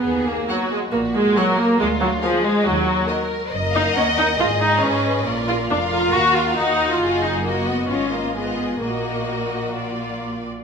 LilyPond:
<<
  \new Staff \with { instrumentName = "Violin section" } { \time 4/4 \key dis \minor \tempo 4 = 137 << { r4 fis''4 r4 fis''4 | r4 eis''4 r4 dis''4 | \key ees \minor ees''8 f''8 ges''4 ees''2 | d''4 f''2 ges''4 |
ees''4 ees''4 ees''4 ees''4 | ees''2 d''4. r8 | } \\ { r4 ais'4 r4 ais'4 | r4 ais'4 r4 ais'4 | bes'2 aes'2 | f'4 bes'2 ges'4 |
ges'4 ges'4 f'4 f'4 | ges'2 f'4. r8 | } >> }
  \new Staff \with { instrumentName = "Violin section" } { \time 4/4 \key dis \minor gis'4 fis'4 fis'4 ais'4 | eis'4 gis'4 fis'4 ais'4 | \key ees \minor ees''2. ces''4 | bes'4 f'4 ges'2 |
aes'4 ges'4 f'4 aes'4 | ges'2.~ ges'8 r8 | }
  \new Staff \with { instrumentName = "Viola section" } { \time 4/4 \key dis \minor b8 ais8 fis8 gis8 ais8 gis8 fis8 ais8 | gis8 fis8 eis8 gis8 fis4~ fis16 r8. | \key ees \minor r8 ees'8 des'8 ees'8 f'8 ees'8 des'4 | r8 f'8 d'8 f'8 ges'8 f'8 ees'8. f'16~ |
f'8 ees'8 bes8 ces'8 des'8 bes8 ces'4 | bes2. r4 | }
  \new Staff \with { instrumentName = "Cello section" } { \clef bass \time 4/4 \key dis \minor dis,4 r4 ais,4 r4 | d,4 r4 dis,4 r4 | \key ees \minor ges,4 ees,4 aes,4 aes4 | bes,4 f,4 ees,4 ees4 |
ges,2 aes,2 | bes,2.~ bes,8 r8 | }
  \new Staff \with { instrumentName = "Double bass section" } { \clef bass \time 4/4 \key dis \minor dis,4 r4 ais,,4 r4 | d,4 r4 dis,4 r4 | \key ees \minor ges,,4 ees,4 aes,,4 aes,4 | bes,,4 f,,4 ees,4 ees,4 |
ges,,2 aes,,2 | bes,,2.~ bes,,8 r8 | }
>>